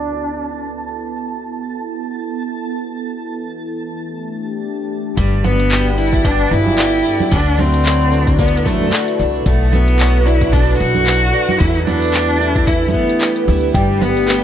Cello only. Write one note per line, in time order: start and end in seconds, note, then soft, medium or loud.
0.00 0.58 D4 loud
5.17 5.46 G3 loud
5.44 5.98 B3 loud
5.98 6.27 E4 loud
6.25 6.53 D4 loud
6.52 7.34 E4 loud
7.32 7.60 D4 loud
7.59 8.39 C4 loud
8.39 8.68 B3 medium
8.67 9.20 A3 medium
9.46 9.74 A3 loud
9.72 10.27 B3 loud
10.26 10.54 E4 loud
10.53 10.78 D4 loud
10.78 11.60 F#4 loud
11.59 11.85 E4 loud
11.86 12.68 D4 loud
12.67 12.93 E4 medium
12.93 13.44 B3 medium
13.75 14.03 G3 loud
14.02 14.44 B3 loud